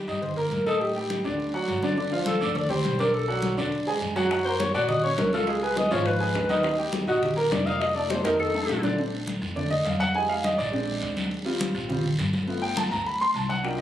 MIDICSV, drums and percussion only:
0, 0, Header, 1, 2, 480
1, 0, Start_track
1, 0, Key_signature, -2, "major"
1, 0, Tempo, 291687
1, 1336, Time_signature, 4, 2, 24, 8
1, 22729, End_track
2, 0, Start_track
2, 0, Title_t, "Drums"
2, 133, Note_on_c, 9, 73, 71
2, 297, Note_off_c, 9, 73, 0
2, 370, Note_on_c, 9, 63, 34
2, 370, Note_on_c, 9, 64, 86
2, 379, Note_on_c, 9, 74, 68
2, 535, Note_off_c, 9, 63, 0
2, 535, Note_off_c, 9, 64, 0
2, 544, Note_off_c, 9, 74, 0
2, 611, Note_on_c, 9, 63, 32
2, 611, Note_on_c, 9, 64, 62
2, 775, Note_off_c, 9, 63, 0
2, 775, Note_off_c, 9, 64, 0
2, 854, Note_on_c, 9, 63, 80
2, 854, Note_on_c, 9, 73, 69
2, 1018, Note_off_c, 9, 73, 0
2, 1019, Note_off_c, 9, 63, 0
2, 1095, Note_on_c, 9, 63, 77
2, 1104, Note_on_c, 9, 73, 71
2, 1259, Note_off_c, 9, 63, 0
2, 1268, Note_off_c, 9, 73, 0
2, 1333, Note_on_c, 9, 63, 30
2, 1340, Note_on_c, 9, 74, 71
2, 1498, Note_off_c, 9, 63, 0
2, 1504, Note_off_c, 9, 74, 0
2, 1576, Note_on_c, 9, 63, 30
2, 1741, Note_off_c, 9, 63, 0
2, 1812, Note_on_c, 9, 63, 94
2, 1815, Note_on_c, 9, 73, 61
2, 1977, Note_off_c, 9, 63, 0
2, 1980, Note_off_c, 9, 73, 0
2, 2059, Note_on_c, 9, 63, 39
2, 2060, Note_on_c, 9, 73, 67
2, 2224, Note_off_c, 9, 63, 0
2, 2224, Note_off_c, 9, 73, 0
2, 2297, Note_on_c, 9, 63, 36
2, 2301, Note_on_c, 9, 74, 63
2, 2461, Note_off_c, 9, 63, 0
2, 2466, Note_off_c, 9, 74, 0
2, 2533, Note_on_c, 9, 63, 34
2, 2697, Note_off_c, 9, 63, 0
2, 2771, Note_on_c, 9, 63, 36
2, 2771, Note_on_c, 9, 73, 73
2, 2935, Note_off_c, 9, 63, 0
2, 2936, Note_off_c, 9, 73, 0
2, 3001, Note_on_c, 9, 63, 83
2, 3018, Note_on_c, 9, 73, 69
2, 3165, Note_off_c, 9, 63, 0
2, 3183, Note_off_c, 9, 73, 0
2, 3231, Note_on_c, 9, 63, 35
2, 3252, Note_on_c, 9, 74, 72
2, 3396, Note_off_c, 9, 63, 0
2, 3417, Note_off_c, 9, 74, 0
2, 3478, Note_on_c, 9, 63, 32
2, 3643, Note_off_c, 9, 63, 0
2, 3717, Note_on_c, 9, 63, 96
2, 3734, Note_on_c, 9, 73, 61
2, 3881, Note_off_c, 9, 63, 0
2, 3898, Note_off_c, 9, 73, 0
2, 3975, Note_on_c, 9, 73, 76
2, 4140, Note_off_c, 9, 73, 0
2, 4199, Note_on_c, 9, 63, 38
2, 4199, Note_on_c, 9, 64, 81
2, 4208, Note_on_c, 9, 74, 72
2, 4363, Note_off_c, 9, 63, 0
2, 4363, Note_off_c, 9, 64, 0
2, 4372, Note_off_c, 9, 74, 0
2, 4435, Note_on_c, 9, 63, 33
2, 4435, Note_on_c, 9, 64, 69
2, 4600, Note_off_c, 9, 63, 0
2, 4600, Note_off_c, 9, 64, 0
2, 4685, Note_on_c, 9, 63, 85
2, 4695, Note_on_c, 9, 73, 65
2, 4849, Note_off_c, 9, 63, 0
2, 4860, Note_off_c, 9, 73, 0
2, 4919, Note_on_c, 9, 63, 79
2, 4929, Note_on_c, 9, 73, 67
2, 5083, Note_off_c, 9, 63, 0
2, 5094, Note_off_c, 9, 73, 0
2, 5163, Note_on_c, 9, 63, 35
2, 5172, Note_on_c, 9, 74, 67
2, 5327, Note_off_c, 9, 63, 0
2, 5336, Note_off_c, 9, 74, 0
2, 5404, Note_on_c, 9, 63, 33
2, 5569, Note_off_c, 9, 63, 0
2, 5635, Note_on_c, 9, 63, 92
2, 5651, Note_on_c, 9, 73, 64
2, 5799, Note_off_c, 9, 63, 0
2, 5816, Note_off_c, 9, 73, 0
2, 5885, Note_on_c, 9, 63, 36
2, 5893, Note_on_c, 9, 73, 80
2, 6049, Note_off_c, 9, 63, 0
2, 6058, Note_off_c, 9, 73, 0
2, 6123, Note_on_c, 9, 74, 70
2, 6126, Note_on_c, 9, 63, 37
2, 6288, Note_off_c, 9, 74, 0
2, 6290, Note_off_c, 9, 63, 0
2, 6370, Note_on_c, 9, 63, 34
2, 6535, Note_off_c, 9, 63, 0
2, 6615, Note_on_c, 9, 63, 34
2, 6616, Note_on_c, 9, 73, 68
2, 6780, Note_off_c, 9, 63, 0
2, 6781, Note_off_c, 9, 73, 0
2, 6847, Note_on_c, 9, 63, 77
2, 6847, Note_on_c, 9, 73, 68
2, 7011, Note_off_c, 9, 63, 0
2, 7012, Note_off_c, 9, 73, 0
2, 7092, Note_on_c, 9, 60, 71
2, 7094, Note_on_c, 9, 74, 75
2, 7098, Note_on_c, 9, 63, 35
2, 7257, Note_off_c, 9, 60, 0
2, 7258, Note_off_c, 9, 74, 0
2, 7263, Note_off_c, 9, 63, 0
2, 7336, Note_on_c, 9, 63, 32
2, 7500, Note_off_c, 9, 63, 0
2, 7565, Note_on_c, 9, 73, 73
2, 7567, Note_on_c, 9, 60, 58
2, 7569, Note_on_c, 9, 63, 91
2, 7729, Note_off_c, 9, 73, 0
2, 7732, Note_off_c, 9, 60, 0
2, 7733, Note_off_c, 9, 63, 0
2, 7805, Note_on_c, 9, 73, 69
2, 7970, Note_off_c, 9, 73, 0
2, 8039, Note_on_c, 9, 63, 34
2, 8039, Note_on_c, 9, 64, 87
2, 8043, Note_on_c, 9, 60, 56
2, 8058, Note_on_c, 9, 74, 69
2, 8204, Note_off_c, 9, 63, 0
2, 8204, Note_off_c, 9, 64, 0
2, 8207, Note_off_c, 9, 60, 0
2, 8222, Note_off_c, 9, 74, 0
2, 8289, Note_on_c, 9, 63, 34
2, 8454, Note_off_c, 9, 63, 0
2, 8525, Note_on_c, 9, 60, 72
2, 8525, Note_on_c, 9, 61, 93
2, 8529, Note_on_c, 9, 63, 81
2, 8536, Note_on_c, 9, 73, 66
2, 8690, Note_off_c, 9, 60, 0
2, 8690, Note_off_c, 9, 61, 0
2, 8694, Note_off_c, 9, 63, 0
2, 8700, Note_off_c, 9, 73, 0
2, 8766, Note_on_c, 9, 63, 79
2, 8774, Note_on_c, 9, 73, 70
2, 8931, Note_off_c, 9, 63, 0
2, 8939, Note_off_c, 9, 73, 0
2, 9005, Note_on_c, 9, 60, 74
2, 9010, Note_on_c, 9, 63, 34
2, 9016, Note_on_c, 9, 74, 75
2, 9169, Note_off_c, 9, 60, 0
2, 9175, Note_off_c, 9, 63, 0
2, 9180, Note_off_c, 9, 74, 0
2, 9254, Note_on_c, 9, 63, 33
2, 9419, Note_off_c, 9, 63, 0
2, 9482, Note_on_c, 9, 60, 54
2, 9493, Note_on_c, 9, 63, 88
2, 9494, Note_on_c, 9, 73, 74
2, 9647, Note_off_c, 9, 60, 0
2, 9658, Note_off_c, 9, 63, 0
2, 9658, Note_off_c, 9, 73, 0
2, 9726, Note_on_c, 9, 60, 35
2, 9726, Note_on_c, 9, 73, 77
2, 9734, Note_on_c, 9, 63, 37
2, 9890, Note_off_c, 9, 73, 0
2, 9891, Note_off_c, 9, 60, 0
2, 9898, Note_off_c, 9, 63, 0
2, 9965, Note_on_c, 9, 74, 72
2, 9967, Note_on_c, 9, 60, 59
2, 9970, Note_on_c, 9, 63, 36
2, 10130, Note_off_c, 9, 74, 0
2, 10132, Note_off_c, 9, 60, 0
2, 10135, Note_off_c, 9, 63, 0
2, 10207, Note_on_c, 9, 60, 37
2, 10213, Note_on_c, 9, 63, 34
2, 10372, Note_off_c, 9, 60, 0
2, 10378, Note_off_c, 9, 63, 0
2, 10449, Note_on_c, 9, 63, 36
2, 10451, Note_on_c, 9, 73, 64
2, 10456, Note_on_c, 9, 60, 71
2, 10456, Note_on_c, 9, 61, 83
2, 10613, Note_off_c, 9, 63, 0
2, 10616, Note_off_c, 9, 73, 0
2, 10620, Note_off_c, 9, 60, 0
2, 10620, Note_off_c, 9, 61, 0
2, 10683, Note_on_c, 9, 73, 73
2, 10684, Note_on_c, 9, 63, 81
2, 10699, Note_on_c, 9, 60, 36
2, 10847, Note_off_c, 9, 73, 0
2, 10849, Note_off_c, 9, 63, 0
2, 10864, Note_off_c, 9, 60, 0
2, 10917, Note_on_c, 9, 74, 78
2, 10929, Note_on_c, 9, 63, 34
2, 10933, Note_on_c, 9, 60, 75
2, 11081, Note_off_c, 9, 74, 0
2, 11094, Note_off_c, 9, 63, 0
2, 11098, Note_off_c, 9, 60, 0
2, 11177, Note_on_c, 9, 63, 31
2, 11341, Note_off_c, 9, 63, 0
2, 11398, Note_on_c, 9, 63, 95
2, 11411, Note_on_c, 9, 73, 70
2, 11418, Note_on_c, 9, 60, 59
2, 11562, Note_off_c, 9, 63, 0
2, 11576, Note_off_c, 9, 73, 0
2, 11583, Note_off_c, 9, 60, 0
2, 11658, Note_on_c, 9, 73, 74
2, 11822, Note_off_c, 9, 73, 0
2, 11893, Note_on_c, 9, 60, 60
2, 11895, Note_on_c, 9, 74, 73
2, 11896, Note_on_c, 9, 63, 39
2, 11896, Note_on_c, 9, 64, 93
2, 12058, Note_off_c, 9, 60, 0
2, 12060, Note_off_c, 9, 74, 0
2, 12061, Note_off_c, 9, 63, 0
2, 12061, Note_off_c, 9, 64, 0
2, 12129, Note_on_c, 9, 63, 34
2, 12294, Note_off_c, 9, 63, 0
2, 12375, Note_on_c, 9, 60, 71
2, 12375, Note_on_c, 9, 61, 91
2, 12378, Note_on_c, 9, 73, 73
2, 12380, Note_on_c, 9, 63, 91
2, 12539, Note_off_c, 9, 60, 0
2, 12539, Note_off_c, 9, 61, 0
2, 12542, Note_off_c, 9, 73, 0
2, 12544, Note_off_c, 9, 63, 0
2, 12613, Note_on_c, 9, 73, 70
2, 12621, Note_on_c, 9, 63, 81
2, 12777, Note_off_c, 9, 73, 0
2, 12786, Note_off_c, 9, 63, 0
2, 12855, Note_on_c, 9, 74, 73
2, 12861, Note_on_c, 9, 60, 75
2, 13020, Note_off_c, 9, 74, 0
2, 13026, Note_off_c, 9, 60, 0
2, 13096, Note_on_c, 9, 63, 31
2, 13261, Note_off_c, 9, 63, 0
2, 13333, Note_on_c, 9, 63, 91
2, 13333, Note_on_c, 9, 73, 67
2, 13335, Note_on_c, 9, 60, 96
2, 13498, Note_off_c, 9, 63, 0
2, 13498, Note_off_c, 9, 73, 0
2, 13500, Note_off_c, 9, 60, 0
2, 13568, Note_on_c, 9, 73, 77
2, 13575, Note_on_c, 9, 60, 87
2, 13581, Note_on_c, 9, 63, 39
2, 13733, Note_off_c, 9, 73, 0
2, 13739, Note_off_c, 9, 60, 0
2, 13746, Note_off_c, 9, 63, 0
2, 13813, Note_on_c, 9, 60, 59
2, 13818, Note_on_c, 9, 63, 38
2, 13824, Note_on_c, 9, 74, 76
2, 13978, Note_off_c, 9, 60, 0
2, 13983, Note_off_c, 9, 63, 0
2, 13989, Note_off_c, 9, 74, 0
2, 14060, Note_on_c, 9, 63, 37
2, 14062, Note_on_c, 9, 61, 86
2, 14225, Note_off_c, 9, 63, 0
2, 14227, Note_off_c, 9, 61, 0
2, 14295, Note_on_c, 9, 63, 38
2, 14304, Note_on_c, 9, 73, 69
2, 14306, Note_on_c, 9, 61, 113
2, 14459, Note_off_c, 9, 63, 0
2, 14468, Note_off_c, 9, 73, 0
2, 14471, Note_off_c, 9, 61, 0
2, 14535, Note_on_c, 9, 63, 83
2, 14547, Note_on_c, 9, 61, 77
2, 14548, Note_on_c, 9, 73, 71
2, 14700, Note_off_c, 9, 63, 0
2, 14711, Note_off_c, 9, 61, 0
2, 14713, Note_off_c, 9, 73, 0
2, 14781, Note_on_c, 9, 63, 31
2, 14787, Note_on_c, 9, 74, 72
2, 14946, Note_off_c, 9, 63, 0
2, 14951, Note_off_c, 9, 74, 0
2, 15015, Note_on_c, 9, 63, 32
2, 15180, Note_off_c, 9, 63, 0
2, 15261, Note_on_c, 9, 63, 92
2, 15264, Note_on_c, 9, 73, 62
2, 15426, Note_off_c, 9, 63, 0
2, 15428, Note_off_c, 9, 73, 0
2, 15505, Note_on_c, 9, 73, 75
2, 15669, Note_off_c, 9, 73, 0
2, 15738, Note_on_c, 9, 74, 73
2, 15747, Note_on_c, 9, 63, 36
2, 15747, Note_on_c, 9, 64, 83
2, 15903, Note_off_c, 9, 74, 0
2, 15912, Note_off_c, 9, 63, 0
2, 15912, Note_off_c, 9, 64, 0
2, 15980, Note_on_c, 9, 63, 33
2, 15980, Note_on_c, 9, 64, 74
2, 16145, Note_off_c, 9, 63, 0
2, 16145, Note_off_c, 9, 64, 0
2, 16216, Note_on_c, 9, 73, 64
2, 16230, Note_on_c, 9, 63, 80
2, 16380, Note_off_c, 9, 73, 0
2, 16395, Note_off_c, 9, 63, 0
2, 16457, Note_on_c, 9, 73, 65
2, 16465, Note_on_c, 9, 63, 83
2, 16621, Note_off_c, 9, 73, 0
2, 16629, Note_off_c, 9, 63, 0
2, 16697, Note_on_c, 9, 74, 72
2, 16700, Note_on_c, 9, 63, 35
2, 16862, Note_off_c, 9, 74, 0
2, 16864, Note_off_c, 9, 63, 0
2, 16939, Note_on_c, 9, 63, 31
2, 17104, Note_off_c, 9, 63, 0
2, 17181, Note_on_c, 9, 73, 62
2, 17182, Note_on_c, 9, 63, 98
2, 17346, Note_off_c, 9, 63, 0
2, 17346, Note_off_c, 9, 73, 0
2, 17419, Note_on_c, 9, 63, 36
2, 17430, Note_on_c, 9, 73, 71
2, 17584, Note_off_c, 9, 63, 0
2, 17594, Note_off_c, 9, 73, 0
2, 17663, Note_on_c, 9, 63, 37
2, 17664, Note_on_c, 9, 74, 68
2, 17827, Note_off_c, 9, 63, 0
2, 17829, Note_off_c, 9, 74, 0
2, 17900, Note_on_c, 9, 63, 31
2, 18065, Note_off_c, 9, 63, 0
2, 18141, Note_on_c, 9, 73, 66
2, 18144, Note_on_c, 9, 63, 35
2, 18306, Note_off_c, 9, 73, 0
2, 18308, Note_off_c, 9, 63, 0
2, 18373, Note_on_c, 9, 73, 71
2, 18379, Note_on_c, 9, 63, 82
2, 18538, Note_off_c, 9, 73, 0
2, 18544, Note_off_c, 9, 63, 0
2, 18616, Note_on_c, 9, 74, 69
2, 18625, Note_on_c, 9, 63, 33
2, 18781, Note_off_c, 9, 74, 0
2, 18789, Note_off_c, 9, 63, 0
2, 18860, Note_on_c, 9, 63, 33
2, 19024, Note_off_c, 9, 63, 0
2, 19090, Note_on_c, 9, 73, 70
2, 19100, Note_on_c, 9, 63, 96
2, 19255, Note_off_c, 9, 73, 0
2, 19265, Note_off_c, 9, 63, 0
2, 19338, Note_on_c, 9, 73, 79
2, 19502, Note_off_c, 9, 73, 0
2, 19575, Note_on_c, 9, 74, 72
2, 19583, Note_on_c, 9, 63, 38
2, 19583, Note_on_c, 9, 64, 84
2, 19740, Note_off_c, 9, 74, 0
2, 19747, Note_off_c, 9, 63, 0
2, 19747, Note_off_c, 9, 64, 0
2, 19813, Note_on_c, 9, 63, 37
2, 19813, Note_on_c, 9, 64, 71
2, 19977, Note_off_c, 9, 63, 0
2, 19977, Note_off_c, 9, 64, 0
2, 20052, Note_on_c, 9, 73, 73
2, 20063, Note_on_c, 9, 63, 89
2, 20217, Note_off_c, 9, 73, 0
2, 20227, Note_off_c, 9, 63, 0
2, 20293, Note_on_c, 9, 73, 69
2, 20297, Note_on_c, 9, 63, 81
2, 20458, Note_off_c, 9, 73, 0
2, 20462, Note_off_c, 9, 63, 0
2, 20531, Note_on_c, 9, 74, 73
2, 20545, Note_on_c, 9, 63, 34
2, 20695, Note_off_c, 9, 74, 0
2, 20710, Note_off_c, 9, 63, 0
2, 20776, Note_on_c, 9, 63, 34
2, 20940, Note_off_c, 9, 63, 0
2, 21012, Note_on_c, 9, 63, 93
2, 21023, Note_on_c, 9, 73, 69
2, 21177, Note_off_c, 9, 63, 0
2, 21187, Note_off_c, 9, 73, 0
2, 21253, Note_on_c, 9, 63, 38
2, 21265, Note_on_c, 9, 73, 75
2, 21418, Note_off_c, 9, 63, 0
2, 21430, Note_off_c, 9, 73, 0
2, 21499, Note_on_c, 9, 63, 36
2, 21500, Note_on_c, 9, 74, 71
2, 21663, Note_off_c, 9, 63, 0
2, 21665, Note_off_c, 9, 74, 0
2, 21741, Note_on_c, 9, 63, 35
2, 21905, Note_off_c, 9, 63, 0
2, 21983, Note_on_c, 9, 63, 33
2, 21984, Note_on_c, 9, 73, 64
2, 22147, Note_off_c, 9, 63, 0
2, 22149, Note_off_c, 9, 73, 0
2, 22214, Note_on_c, 9, 63, 81
2, 22215, Note_on_c, 9, 73, 76
2, 22379, Note_off_c, 9, 63, 0
2, 22380, Note_off_c, 9, 73, 0
2, 22456, Note_on_c, 9, 60, 69
2, 22460, Note_on_c, 9, 63, 33
2, 22461, Note_on_c, 9, 74, 73
2, 22620, Note_off_c, 9, 60, 0
2, 22625, Note_off_c, 9, 63, 0
2, 22626, Note_off_c, 9, 74, 0
2, 22729, End_track
0, 0, End_of_file